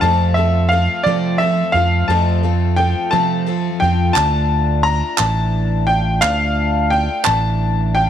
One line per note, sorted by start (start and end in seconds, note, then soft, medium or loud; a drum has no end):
0.00 0.36 F2 medium
0.00 0.86 F2 medium
0.00 2.05 F2 medium
0.00 0.37 C3 medium
0.00 0.37 F3 medium
0.00 0.36 A3 medium
0.00 2.09 A3 soft
0.00 0.36 C4 medium
0.00 3.19 F4 medium
0.00 0.35 F4 medium
0.00 0.37 A5 medium
0.05 0.38 A4 medium
0.34 0.70 F3 soft
0.34 0.71 A3 soft
0.34 0.71 C4 soft
0.34 0.71 F4 soft
0.34 0.67 E5 medium
0.39 0.73 A4 medium
0.69 1.06 F3 medium
0.69 1.05 A3 medium
0.69 1.05 F5 medium
0.73 1.06 C4 medium
0.73 1.05 F4 medium
0.73 1.08 A4 medium
1.03 1.62 F3 medium
1.03 1.39 F3 medium
1.03 3.12 F3 medium
1.03 1.40 A3 medium
1.03 1.41 C4 medium
1.03 1.41 F4 medium
1.03 1.40 D5 medium
1.08 1.41 F2 soft
1.08 1.41 C3 soft
1.08 1.41 A4 medium
1.38 1.75 F3 medium
1.38 1.75 A3 medium
1.38 1.74 C4 medium
1.38 1.76 A4 medium
1.38 1.71 E5 medium
1.43 1.73 F4 medium
1.72 2.02 F2 medium
1.72 2.09 F3 soft
1.72 2.09 A3 soft
1.72 2.09 C4 soft
1.72 2.09 F4 soft
1.72 2.09 F5 medium
1.76 2.10 A4 medium
2.08 2.93 F2 medium
2.08 4.12 F2 medium
2.08 2.44 F2 medium
2.08 2.44 C3 medium
2.08 2.44 F3 medium
2.08 4.12 A3 medium
2.08 2.43 A3 medium
2.08 2.43 C4 medium
2.08 2.42 F4 medium
2.08 2.43 A4 medium
2.08 3.09 A5 medium
2.43 2.75 F3 soft
2.43 2.76 A3 soft
2.43 2.77 C4 soft
2.43 2.77 F4 soft
2.43 2.78 A4 medium
2.76 3.12 F3 medium
2.76 3.12 A3 medium
2.76 3.11 C4 medium
2.76 3.11 F4 medium
2.76 3.12 A4 medium
2.76 3.09 G5 medium
3.11 3.48 F2 soft
3.11 3.48 C3 medium
3.11 4.12 F3 medium
3.11 3.69 F3 medium
3.11 3.45 F3 medium
3.11 3.46 A3 medium
3.11 3.47 C4 medium
3.11 3.47 F4 medium
3.11 3.46 A4 medium
3.11 3.76 A5 medium
3.47 3.81 F3 soft
3.47 3.81 A3 medium
3.47 3.82 C4 medium
3.47 3.81 F4 medium
3.47 3.82 A4 medium
3.80 4.10 F2 medium
3.80 4.15 A3 soft
3.80 4.16 C4 soft
3.80 4.16 F4 medium
3.80 4.12 A4 medium
3.80 4.13 G5 medium
3.84 4.17 F3 soft
4.13 5.01 D2 medium
4.13 4.85 D3 medium
4.13 4.85 A3 medium
4.13 4.85 D4 medium
4.13 4.87 F4 medium
4.13 4.79 A5 medium
4.13 clap medium
4.83 5.19 A3 medium
4.83 5.19 D4 medium
4.83 5.19 A#5 medium
4.88 5.21 F4 medium
5.17 6.23 A1 medium
5.17 5.89 D3 soft
5.17 5.89 E3 medium
5.17 5.90 A3 medium
5.17 5.88 D4 medium
5.17 5.89 A5 medium
5.17 clap medium
5.87 6.23 A3 soft
5.87 6.23 D4 soft
5.87 6.23 F4 soft
5.87 6.19 G5 medium
6.21 7.07 D2 medium
6.21 6.92 D3 medium
6.21 6.92 A3 medium
6.21 6.91 D4 medium
6.21 6.93 F4 medium
6.21 6.93 F5 medium
6.21 clap medium
6.90 7.26 A3 medium
6.90 7.26 D4 medium
6.90 7.27 F4 medium
6.90 7.26 G5 medium
7.24 8.10 A1 medium
7.24 7.95 E3 medium
7.24 7.97 A3 medium
7.24 7.95 D4 medium
7.24 7.90 A5 medium
7.24 clap medium
7.28 7.96 D3 medium
7.95 8.10 A3 soft
7.95 8.10 D4 soft
7.95 8.10 F4 medium
7.95 8.10 G5 medium